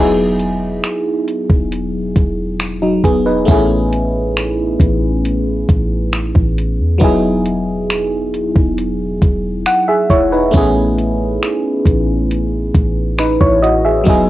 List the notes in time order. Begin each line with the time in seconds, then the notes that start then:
Already playing: E1 F#3 B3 D#4 E4 G#4 E5
0.39 closed hi-hat
0.84 finger snap, closed hi-hat
1.28 closed hi-hat
1.50 E1, kick
1.72 closed hi-hat
2.16 E1, kick, closed hi-hat
2.60 finger snap, closed hi-hat
2.82 F#3 D#4
3.04 E1 B3 G#4, kick, closed hi-hat
3.26 D#4 B4
3.45 A1 A3 B3 C#4, kick, closed hi-hat
3.50 E4 G#4
3.93 closed hi-hat
4.37 finger snap, closed hi-hat
4.80 A1, kick, closed hi-hat
5.25 closed hi-hat
5.69 A1, kick, closed hi-hat
6.13 finger snap, closed hi-hat
6.35 A1, kick
6.58 closed hi-hat
6.79 E2
6.98 E1 F#3 B3 D#4, kick, closed hi-hat
7.03 E4 G#4
7.46 closed hi-hat
7.90 finger snap, closed hi-hat
8.34 closed hi-hat
8.56 E1, kick
8.78 closed hi-hat
9.22 E1, kick, closed hi-hat
9.66 F#5, finger snap, closed hi-hat
9.88 G#4 E5
10.10 E1 E4 C#5, kick, closed hi-hat
10.32 D#4 B4
10.51 A1 A3 B3 C#4, kick, closed hi-hat
10.56 E4 G#4
10.98 closed hi-hat
11.43 finger snap, closed hi-hat
11.86 A1, kick, closed hi-hat
12.31 closed hi-hat
12.74 A1, kick, closed hi-hat
13.18 D#4 B4, finger snap, closed hi-hat
13.41 A1 E4 C#5, kick
13.62 F#4 D#5, closed hi-hat
13.85 G#4 E5
14.04 E1 F#3 B3 D#4, kick, closed hi-hat
14.08 E4 G#4